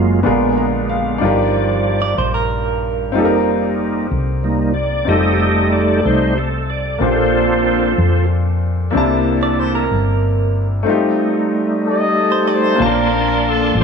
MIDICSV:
0, 0, Header, 1, 6, 480
1, 0, Start_track
1, 0, Key_signature, -2, "major"
1, 0, Tempo, 643087
1, 908, Time_signature, 6, 3, 24, 8
1, 10329, End_track
2, 0, Start_track
2, 0, Title_t, "Clean electric guitar"
2, 0, Program_c, 0, 27
2, 1506, Note_on_c, 0, 74, 69
2, 1621, Note_off_c, 0, 74, 0
2, 1630, Note_on_c, 0, 72, 72
2, 1743, Note_off_c, 0, 72, 0
2, 1749, Note_on_c, 0, 70, 65
2, 2318, Note_off_c, 0, 70, 0
2, 7037, Note_on_c, 0, 74, 66
2, 7162, Note_off_c, 0, 74, 0
2, 7162, Note_on_c, 0, 72, 68
2, 7269, Note_off_c, 0, 72, 0
2, 7279, Note_on_c, 0, 70, 69
2, 7963, Note_off_c, 0, 70, 0
2, 9194, Note_on_c, 0, 72, 60
2, 9311, Note_off_c, 0, 72, 0
2, 9311, Note_on_c, 0, 74, 69
2, 9422, Note_off_c, 0, 74, 0
2, 9422, Note_on_c, 0, 72, 57
2, 9652, Note_off_c, 0, 72, 0
2, 10329, End_track
3, 0, Start_track
3, 0, Title_t, "Horn section"
3, 0, Program_c, 1, 61
3, 8847, Note_on_c, 1, 69, 74
3, 8849, Note_on_c, 1, 67, 64
3, 8863, Note_on_c, 1, 75, 88
3, 9294, Note_off_c, 1, 75, 0
3, 9340, Note_on_c, 1, 72, 82
3, 9526, Note_off_c, 1, 69, 0
3, 9527, Note_off_c, 1, 67, 0
3, 9547, Note_off_c, 1, 72, 0
3, 9563, Note_on_c, 1, 62, 73
3, 9569, Note_on_c, 1, 65, 70
3, 9580, Note_on_c, 1, 70, 101
3, 10042, Note_off_c, 1, 70, 0
3, 10059, Note_on_c, 1, 69, 85
3, 10243, Note_off_c, 1, 62, 0
3, 10246, Note_off_c, 1, 65, 0
3, 10269, Note_off_c, 1, 69, 0
3, 10277, Note_on_c, 1, 69, 76
3, 10282, Note_on_c, 1, 65, 74
3, 10293, Note_on_c, 1, 72, 98
3, 10329, Note_off_c, 1, 65, 0
3, 10329, Note_off_c, 1, 69, 0
3, 10329, Note_off_c, 1, 72, 0
3, 10329, End_track
4, 0, Start_track
4, 0, Title_t, "Grand piano"
4, 0, Program_c, 2, 0
4, 0, Control_c, 2, 64, 127
4, 0, Note_on_c, 2, 58, 52
4, 0, Note_on_c, 2, 61, 44
4, 0, Note_on_c, 2, 65, 46
4, 0, Note_on_c, 2, 66, 43
4, 0, Note_on_c, 2, 68, 58
4, 171, Note_off_c, 2, 65, 0
4, 172, Note_on_c, 2, 59, 63
4, 175, Note_on_c, 2, 62, 53
4, 177, Note_off_c, 2, 68, 0
4, 182, Note_on_c, 2, 65, 56
4, 184, Note_off_c, 2, 58, 0
4, 185, Note_on_c, 2, 46, 54
4, 186, Note_off_c, 2, 61, 0
4, 189, Note_on_c, 2, 68, 53
4, 194, Note_off_c, 2, 66, 0
4, 196, Note_on_c, 2, 70, 66
4, 200, Control_c, 2, 64, 0
4, 348, Control_c, 2, 64, 127
4, 428, Note_on_c, 2, 82, 50
4, 651, Note_off_c, 2, 82, 0
4, 667, Note_on_c, 2, 77, 55
4, 872, Note_off_c, 2, 62, 0
4, 876, Note_off_c, 2, 46, 0
4, 883, Note_on_c, 2, 62, 62
4, 891, Note_off_c, 2, 77, 0
4, 895, Note_off_c, 2, 65, 0
4, 895, Note_on_c, 2, 63, 56
4, 900, Note_off_c, 2, 59, 0
4, 906, Note_on_c, 2, 43, 61
4, 907, Note_on_c, 2, 65, 57
4, 908, Note_off_c, 2, 68, 0
4, 912, Note_off_c, 2, 70, 0
4, 919, Control_c, 2, 64, 0
4, 921, Note_on_c, 2, 67, 61
4, 933, Note_on_c, 2, 70, 73
4, 1040, Control_c, 2, 64, 127
4, 1597, Note_off_c, 2, 43, 0
4, 2306, Note_off_c, 2, 62, 0
4, 2312, Note_off_c, 2, 63, 0
4, 2318, Note_off_c, 2, 65, 0
4, 2325, Note_off_c, 2, 67, 0
4, 2328, Note_on_c, 2, 60, 65
4, 2331, Note_off_c, 2, 70, 0
4, 2340, Note_on_c, 2, 63, 57
4, 2352, Note_on_c, 2, 65, 54
4, 2358, Control_c, 2, 64, 0
4, 2363, Note_on_c, 2, 67, 56
4, 2376, Note_on_c, 2, 69, 55
4, 2411, Note_off_c, 2, 69, 0
4, 2425, Note_on_c, 2, 70, 69
4, 2491, Control_c, 2, 64, 127
4, 3749, Note_off_c, 2, 60, 0
4, 3755, Note_off_c, 2, 63, 0
4, 3761, Note_off_c, 2, 65, 0
4, 3766, Note_on_c, 2, 60, 50
4, 3767, Note_off_c, 2, 67, 0
4, 3778, Note_on_c, 2, 63, 46
4, 3789, Note_on_c, 2, 65, 45
4, 3795, Control_c, 2, 64, 0
4, 3798, Note_off_c, 2, 70, 0
4, 3802, Note_on_c, 2, 67, 46
4, 3816, Note_on_c, 2, 69, 57
4, 3940, Control_c, 2, 64, 127
4, 5188, Note_off_c, 2, 60, 0
4, 5194, Note_off_c, 2, 63, 0
4, 5200, Note_off_c, 2, 65, 0
4, 5207, Note_off_c, 2, 67, 0
4, 5213, Note_off_c, 2, 69, 0
4, 5214, Note_on_c, 2, 58, 54
4, 5224, Note_on_c, 2, 60, 52
4, 5236, Note_on_c, 2, 46, 53
4, 5238, Control_c, 2, 64, 0
4, 5239, Note_on_c, 2, 62, 47
4, 5248, Note_on_c, 2, 65, 46
4, 5263, Note_on_c, 2, 67, 44
4, 5295, Note_off_c, 2, 67, 0
4, 5314, Note_on_c, 2, 69, 53
4, 5357, Control_c, 2, 64, 127
4, 5922, Note_off_c, 2, 46, 0
4, 6632, Note_off_c, 2, 58, 0
4, 6638, Note_off_c, 2, 60, 0
4, 6645, Note_off_c, 2, 62, 0
4, 6650, Note_off_c, 2, 65, 0
4, 6650, Note_on_c, 2, 58, 64
4, 6663, Note_on_c, 2, 60, 58
4, 6677, Note_on_c, 2, 62, 59
4, 6678, Note_on_c, 2, 48, 64
4, 6679, Control_c, 2, 64, 0
4, 6683, Note_off_c, 2, 69, 0
4, 6688, Note_on_c, 2, 64, 60
4, 6698, Note_on_c, 2, 81, 72
4, 6813, Control_c, 2, 64, 127
4, 7363, Note_off_c, 2, 48, 0
4, 8070, Note_off_c, 2, 58, 0
4, 8076, Note_off_c, 2, 60, 0
4, 8082, Note_on_c, 2, 57, 61
4, 8084, Note_off_c, 2, 62, 0
4, 8089, Note_off_c, 2, 64, 0
4, 8094, Note_off_c, 2, 81, 0
4, 8095, Note_on_c, 2, 60, 57
4, 8108, Note_on_c, 2, 63, 60
4, 8119, Control_c, 2, 64, 0
4, 8119, Note_on_c, 2, 65, 54
4, 8134, Note_on_c, 2, 67, 69
4, 8258, Control_c, 2, 64, 127
4, 9504, Note_off_c, 2, 57, 0
4, 9510, Note_off_c, 2, 60, 0
4, 9517, Note_off_c, 2, 63, 0
4, 9520, Note_on_c, 2, 58, 62
4, 9523, Note_off_c, 2, 65, 0
4, 9529, Note_on_c, 2, 60, 60
4, 9530, Note_off_c, 2, 67, 0
4, 9542, Note_on_c, 2, 61, 46
4, 9543, Note_on_c, 2, 46, 56
4, 9555, Control_c, 2, 64, 0
4, 9557, Note_on_c, 2, 65, 56
4, 9569, Note_on_c, 2, 81, 70
4, 9591, Note_on_c, 2, 62, 60
4, 9593, Note_off_c, 2, 61, 0
4, 9706, Control_c, 2, 64, 127
4, 10233, Note_off_c, 2, 46, 0
4, 10329, Note_off_c, 2, 58, 0
4, 10329, Note_off_c, 2, 60, 0
4, 10329, Note_off_c, 2, 62, 0
4, 10329, Note_off_c, 2, 65, 0
4, 10329, Note_off_c, 2, 81, 0
4, 10329, End_track
5, 0, Start_track
5, 0, Title_t, "Tonewheel organ"
5, 0, Program_c, 3, 16
5, 0, Note_on_c, 3, 54, 43
5, 0, Note_on_c, 3, 56, 43
5, 0, Note_on_c, 3, 58, 47
5, 0, Note_on_c, 3, 65, 61
5, 150, Note_off_c, 3, 54, 0
5, 151, Note_off_c, 3, 65, 0
5, 155, Note_off_c, 3, 56, 0
5, 155, Note_off_c, 3, 58, 0
5, 183, Note_on_c, 3, 50, 44
5, 184, Note_on_c, 3, 59, 46
5, 186, Note_on_c, 3, 56, 40
5, 876, Note_off_c, 3, 50, 0
5, 876, Note_off_c, 3, 59, 0
5, 877, Note_off_c, 3, 56, 0
5, 911, Note_on_c, 3, 53, 44
5, 914, Note_on_c, 3, 55, 44
5, 916, Note_on_c, 3, 74, 45
5, 1599, Note_off_c, 3, 53, 0
5, 1601, Note_off_c, 3, 55, 0
5, 1602, Note_off_c, 3, 74, 0
5, 2350, Note_on_c, 3, 55, 44
5, 2354, Note_on_c, 3, 63, 47
5, 2356, Note_on_c, 3, 58, 39
5, 3038, Note_off_c, 3, 55, 0
5, 3041, Note_off_c, 3, 63, 0
5, 3042, Note_off_c, 3, 58, 0
5, 3308, Note_on_c, 3, 55, 36
5, 3316, Note_on_c, 3, 63, 45
5, 3318, Note_on_c, 3, 58, 34
5, 3524, Note_off_c, 3, 55, 0
5, 3528, Note_off_c, 3, 63, 0
5, 3529, Note_off_c, 3, 58, 0
5, 3536, Note_on_c, 3, 74, 79
5, 3789, Note_off_c, 3, 74, 0
5, 3793, Note_on_c, 3, 67, 61
5, 3795, Note_on_c, 3, 55, 43
5, 3797, Note_on_c, 3, 69, 57
5, 3798, Note_on_c, 3, 75, 88
5, 3799, Note_on_c, 3, 57, 40
5, 3799, Note_on_c, 3, 63, 47
5, 4018, Note_off_c, 3, 75, 0
5, 4027, Note_on_c, 3, 75, 80
5, 4267, Note_on_c, 3, 74, 73
5, 4274, Note_off_c, 3, 75, 0
5, 4480, Note_off_c, 3, 67, 0
5, 4482, Note_off_c, 3, 55, 0
5, 4483, Note_off_c, 3, 57, 0
5, 4483, Note_off_c, 3, 63, 0
5, 4483, Note_off_c, 3, 69, 0
5, 4514, Note_off_c, 3, 74, 0
5, 4519, Note_on_c, 3, 55, 37
5, 4519, Note_on_c, 3, 57, 34
5, 4524, Note_on_c, 3, 72, 76
5, 4525, Note_on_c, 3, 63, 46
5, 4730, Note_off_c, 3, 55, 0
5, 4730, Note_off_c, 3, 57, 0
5, 4733, Note_off_c, 3, 63, 0
5, 4762, Note_on_c, 3, 69, 65
5, 4763, Note_off_c, 3, 72, 0
5, 5000, Note_on_c, 3, 74, 85
5, 5002, Note_off_c, 3, 69, 0
5, 5228, Note_on_c, 3, 58, 47
5, 5228, Note_on_c, 3, 60, 39
5, 5232, Note_on_c, 3, 69, 51
5, 5237, Note_on_c, 3, 62, 48
5, 5239, Note_on_c, 3, 65, 48
5, 5239, Note_on_c, 3, 72, 66
5, 5241, Note_off_c, 3, 74, 0
5, 5918, Note_off_c, 3, 58, 0
5, 5918, Note_off_c, 3, 60, 0
5, 5923, Note_off_c, 3, 62, 0
5, 6160, Note_off_c, 3, 69, 0
5, 6164, Note_off_c, 3, 65, 0
5, 6164, Note_off_c, 3, 72, 0
5, 6647, Note_on_c, 3, 69, 49
5, 6657, Note_on_c, 3, 62, 45
5, 6659, Note_on_c, 3, 58, 41
5, 6659, Note_on_c, 3, 64, 52
5, 7348, Note_off_c, 3, 69, 0
5, 7353, Note_off_c, 3, 62, 0
5, 7354, Note_off_c, 3, 58, 0
5, 7354, Note_off_c, 3, 64, 0
5, 8107, Note_on_c, 3, 55, 47
5, 8110, Note_on_c, 3, 63, 49
5, 8114, Note_on_c, 3, 57, 42
5, 9516, Note_off_c, 3, 55, 0
5, 9517, Note_off_c, 3, 63, 0
5, 9519, Note_off_c, 3, 57, 0
5, 9546, Note_on_c, 3, 74, 57
5, 9546, Note_on_c, 3, 84, 73
5, 9547, Note_on_c, 3, 58, 60
5, 9548, Note_on_c, 3, 81, 56
5, 10329, Note_off_c, 3, 58, 0
5, 10329, Note_off_c, 3, 74, 0
5, 10329, Note_off_c, 3, 81, 0
5, 10329, Note_off_c, 3, 84, 0
5, 10329, End_track
6, 0, Start_track
6, 0, Title_t, "Fingered electric bass"
6, 0, Program_c, 4, 33
6, 0, Note_on_c, 4, 30, 77
6, 164, Note_off_c, 4, 30, 0
6, 193, Note_on_c, 4, 34, 81
6, 881, Note_off_c, 4, 34, 0
6, 909, Note_on_c, 4, 31, 78
6, 1598, Note_off_c, 4, 31, 0
6, 1625, Note_on_c, 4, 34, 79
6, 2350, Note_off_c, 4, 34, 0
6, 2350, Note_on_c, 4, 29, 85
6, 3039, Note_off_c, 4, 29, 0
6, 3070, Note_on_c, 4, 36, 76
6, 3759, Note_off_c, 4, 36, 0
6, 3787, Note_on_c, 4, 29, 75
6, 4477, Note_off_c, 4, 29, 0
6, 4518, Note_on_c, 4, 36, 74
6, 5203, Note_off_c, 4, 36, 0
6, 5230, Note_on_c, 4, 34, 85
6, 5920, Note_off_c, 4, 34, 0
6, 5957, Note_on_c, 4, 41, 79
6, 6643, Note_off_c, 4, 41, 0
6, 6679, Note_on_c, 4, 36, 74
6, 7364, Note_off_c, 4, 36, 0
6, 7399, Note_on_c, 4, 31, 79
6, 8083, Note_off_c, 4, 31, 0
6, 9552, Note_on_c, 4, 34, 89
6, 10237, Note_off_c, 4, 34, 0
6, 10263, Note_on_c, 4, 33, 102
6, 10329, Note_off_c, 4, 33, 0
6, 10329, End_track
0, 0, End_of_file